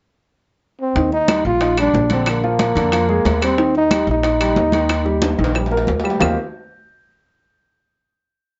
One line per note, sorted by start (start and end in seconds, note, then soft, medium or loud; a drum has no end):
0.81 1.11 C4 medium
0.96 1.41 D#2 medium
0.96 1.23 D#3 medium
0.96 1.23 D#4 medium
0.96 high bongo medium
0.96 high conga soft
1.12 1.43 D#4 loud
1.12 high bongo soft
1.12 high conga soft
1.28 1.55 G3 medium
1.28 1.55 G4 medium
1.28 high bongo medium
1.28 high conga medium
1.28 high timbale medium
1.28 claves medium
1.45 1.91 A#1 medium
1.45 1.76 F4 medium
1.45 high conga soft
1.61 1.75 D#4 medium
1.61 1.75 D#5 medium
1.61 high bongo medium
1.61 high conga soft
1.61 high timbale medium
1.77 2.05 G3 medium
1.77 2.09 D4 loud
1.77 2.05 G4 medium
1.77 high bongo soft
1.77 high conga soft
1.77 high timbale medium
1.77 claves medium
1.94 2.70 A#1 medium
1.94 high bongo soft
1.94 low bongo medium
1.94 high conga medium
2.10 2.38 D3 medium
2.10 2.27 C4 medium
2.10 2.38 D4 medium
2.10 high bongo soft
2.10 high conga medium
2.10 high timbale medium
2.26 3.39 A#3 loud
2.26 high bongo medium
2.26 high conga soft
2.26 high timbale medium
2.26 claves medium
2.44 2.70 F3 medium
2.44 2.70 F4 medium
2.44 high bongo soft
2.44 high conga soft
2.59 high bongo medium
2.59 high conga medium
2.59 high timbale medium
2.75 3.21 F2 medium
2.75 2.90 D3 medium
2.75 2.90 D4 medium
2.75 high conga soft
2.75 high timbale medium
2.92 3.06 F3 medium
2.92 3.06 F4 medium
2.92 high bongo medium
2.92 high conga soft
2.92 high timbale medium
2.92 claves medium
3.09 3.36 G#3 medium
3.09 3.36 G#4 medium
3.09 high bongo soft
3.09 high conga soft
3.25 4.02 D#2 medium
3.25 high bongo soft
3.25 low bongo medium
3.25 high conga medium
3.25 high timbale medium
3.25 low timbale medium
3.41 3.55 G3 medium
3.41 3.73 C4 medium
3.41 3.55 G4 medium
3.41 high bongo soft
3.41 high timbale medium
3.41 claves medium
3.57 3.85 D#3 medium
3.57 3.85 D#4 medium
3.57 high bongo medium
3.57 high conga soft
3.75 4.07 D#4 medium
3.75 high bongo soft
3.75 high conga soft
3.90 4.18 G3 medium
3.90 4.18 G4 medium
3.90 high bongo medium
3.90 high conga medium
3.90 high timbale medium
3.90 claves medium
4.07 4.53 A#1 medium
4.07 5.85 D#4 medium
4.07 high conga soft
4.23 4.37 D#4 medium
4.23 4.37 D#5 medium
4.23 high bongo medium
4.23 high conga soft
4.23 high timbale medium
4.40 4.67 G3 medium
4.40 4.67 G4 medium
4.40 high bongo soft
4.40 high conga soft
4.40 high timbale medium
4.40 claves medium
4.56 5.33 D#2 medium
4.56 high bongo soft
4.56 low bongo medium
4.56 high conga medium
4.72 4.99 D#3 medium
4.72 5.00 D#4 medium
4.72 high bongo soft
4.72 high conga medium
4.72 high timbale medium
4.89 high bongo medium
4.89 high timbale medium
4.89 claves medium
5.05 5.32 G3 medium
5.05 5.32 G4 medium
5.05 high bongo soft
5.05 high conga soft
5.22 high bongo medium
5.22 high conga medium
5.22 high timbale medium
5.38 5.84 A#1 medium
5.38 5.52 D#3 medium
5.38 5.52 D#4 medium
5.38 high conga soft
5.44 high timbale medium
5.54 5.68 G3 medium
5.54 5.69 G4 medium
5.54 high bongo medium
5.54 high conga soft
5.54 claves medium
5.66 low timbale medium
5.71 5.98 A#3 medium
5.71 5.99 A#4 medium
5.71 high bongo soft
5.71 high conga soft
5.77 low timbale medium
5.87 6.17 D#2 medium
5.87 high bongo soft
5.87 low bongo medium
5.87 high conga medium
6.00 low timbale medium
6.04 6.17 G3 medium
6.04 6.17 G4 medium
6.04 high bongo soft
6.04 high conga soft
6.04 claves medium
6.10 low timbale medium
6.20 6.36 D#2 medium
6.20 6.35 D#3 medium
6.20 6.35 A#3 medium
6.20 6.35 C4 medium
6.20 6.35 D#4 medium
6.20 6.36 F4 medium
6.20 6.36 G4 medium
6.20 low bongo medium
6.20 low conga loud
6.20 low timbale medium
6.20 claves medium